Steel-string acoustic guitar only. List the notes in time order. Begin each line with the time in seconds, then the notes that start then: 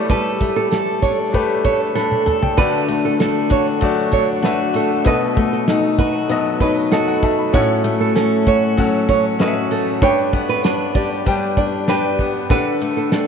0.10 G3 A4
0.42 A3
0.72 A4
1.03 D4
1.34 A3
1.65 A4
1.95 D4
2.26 A4
2.57 D3
2.89 A3
3.20 D4
3.50 F#4
3.81 F#3
4.11 D4
4.42 F#4
4.74 A3
5.05 B2
5.37 A3
5.68 D#4
5.99 F#4
6.30 F#3
6.61 D#4
6.92 F#4
7.23 A3
7.54 A2
7.84 A3
8.15 C#4
8.47 F#4
8.77 F#3
9.09 C#4
9.39 F#4
9.71 A3
10.02 G2
10.33 B3
10.64 D4
10.95 G4
11.26 G3
11.57 D4
11.88 G4
12.20 B3
12.51 D3
12.82 A3
13.13 D4